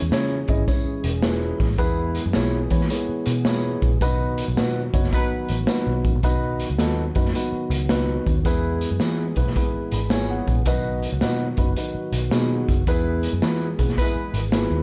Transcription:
Already playing: E3 G#3 C#4 G#4
0.02 E2
0.11 C#3 C#4 E4 G#4 C#5, snare, closed hi-hat, tambourine
0.48 G#1 C#4 E4 G#4 D#5, kick, closed hi-hat
0.68 C#4 E4 G#4 C#5, kick, closed hi-hat, tambourine
0.85 muted picked electric bass stroke
1.04 E1, closed hi-hat
1.22 C#4 E4 G#4 B4, snare, closed hi-hat, tambourine
1.60 A1, kick, snare, open hi-hat
1.78 E2 G#3 B3 E4 G#4 B4, kick, closed hi-hat, tambourine
2.15 closed hi-hat
2.26 F#2
2.33 B1 B3 E4 G#4 C#5, snare, closed hi-hat, tambourine
2.70 E3 B3 E4 G#4 C#5, kick, closed hi-hat
2.81 snare
2.90 B3 E4 G#4 C#5, closed hi-hat, tambourine
3.09 muted picked electric bass stroke
3.26 B2, closed hi-hat
3.45 B3 E4 G#4 C#5, snare, closed hi-hat, tambourine
3.82 A#1, kick, closed hi-hat
4.01 B1 D#3 F#3 B3 D#4 F#4 B4, kick, closed hi-hat, tambourine
4.38 closed hi-hat
4.48 B1
4.57 B2 B3 D#4 F#4 B4, snare, closed hi-hat, tambourine
4.93 F#1 B3 D#4 F#4 C#5, kick, closed hi-hat
5.04 snare
5.12 F#3 B3 D#4 F#4 B4, kick, closed hi-hat, tambourine
5.32 muted picked electric bass stroke
5.48 A1, closed hi-hat
5.67 B3 D#4 F#4 B4, snare, closed hi-hat, tambourine
5.87 B1
6.05 A1, kick, closed hi-hat
6.15 A#1
6.23 B1 D#3 F#3 B3 D#4 F#4 B4, kick, closed hi-hat, tambourine
6.60 closed hi-hat
6.70 C#2
6.79 D#2 B3 D#4 F#4 A4, snare, closed hi-hat, tambourine
7.15 F#2 B3 D#4 F#4 B4, kick, closed hi-hat
7.25 snare
7.35 B3 D#4 F#4 B4, closed hi-hat, tambourine
7.52 muted picked electric bass stroke
7.70 C#2, closed hi-hat
7.89 B3 D#4 F#4 B4, snare, closed hi-hat, tambourine
8.26 D#2, kick, closed hi-hat
8.44 E2 E3 G#3 B3 E4 G#4 B4, kick, closed hi-hat, tambourine
8.81 closed hi-hat
8.91 F#2
9.00 E3 B3 E4 G#4 B4, snare, closed hi-hat, tambourine
9.36 B1 B3 E4 G#4 B4, kick, closed hi-hat
9.47 snare
9.56 B3 E4 G#4 B4, kick, closed hi-hat, tambourine
9.74 muted picked electric bass stroke
9.91 G#1 B5, closed hi-hat
10.10 B3 E4 G#4 C#5 G#5, snare, closed hi-hat, tambourine
10.30 F#5
10.47 A#1, kick, closed hi-hat
10.65 B1 D#3 F#3 B3 D#4 F#4 B4, kick, closed hi-hat, tambourine
11.03 closed hi-hat
11.13 C#2
11.21 B2 B3 D#4 F#4 B4, snare, closed hi-hat, tambourine
11.57 F#1 B3 D#4 F#4 B4, kick, closed hi-hat
11.76 B3 D#4 F#4 B4, closed hi-hat, tambourine
11.95 muted picked electric bass stroke
12.12 B1, closed hi-hat
12.31 B2 B3 D#4 F#4 G#4, snare, closed hi-hat, tambourine
12.69 F#1, kick, closed hi-hat
12.87 E2 E3 G#3 B3 E4 G#4 B4, kick, closed hi-hat, tambourine
13.23 closed hi-hat
13.33 F#2
13.42 E3 B3 E4 G#4 B4, snare, closed hi-hat, tambourine
13.79 B1 B3 E4 G#4 B4, kick, closed hi-hat
13.89 snare
13.97 G#3 B3 E4 G#4 B4, kick, closed hi-hat, tambourine
14.15 muted picked electric bass stroke
14.34 G#1, closed hi-hat
14.52 B3 E4 G#4 B4, snare, closed hi-hat, tambourine
14.71 D#2

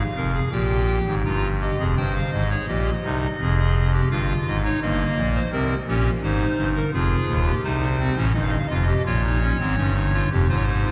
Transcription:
Already playing: F5
0.17 F1 F2 A#4
0.34 G#4
0.52 A#1 A#2 G4 G5
1.07 G#1 G#2
1.25 G1 G2 F4 A#5
1.61 G4 D#5
1.79 F1 F2 G#4
1.97 G1 G2 C5 G5
2.15 F5
2.32 G#1 G#2 D#5
2.50 G#4 C#5
2.68 A#1 A#2 G4 D#5
3.04 C2 C3 D#4
3.40 F1 F2 G#4
3.93 G4
4.11 G1 G2 F4 F5
4.47 G#1 G#2 D#5
4.64 D#4 C#5
4.82 G1 G2 A#3 D#5
5.17 A#1 A#2
5.35 C5
5.52 C2 C3 C4 A#4
5.88 A#1 A#2 C#4 G4
6.23 G#1 G#2 D#4 C5
6.58 G1 G2
6.76 A#4
6.93 F1 F2 F4 G#4
7.29 D#1 D#2
7.46 G4
7.64 C2 C3 D#4 C5
8.00 C4
8.17 A1 A2 C#4
8.34 G1 G2 D#4 D#5
8.42 F5
8.50 D#5
8.58 F5
8.66 F1 F2 F4 D#5
8.74 F5
8.82 D#5
8.87 G4
9.06 A#1 A#2 F4 C#5
9.23 D#4
9.42 C#4
9.60 G#1 G#2 C4
9.77 G1 G2 C#4
9.95 D#4
10.13 F4
10.31 F1 F2 G4
10.49 G#1 G#2 F4 C5
10.56 C#5
10.63 D#4 C5
10.85 F4

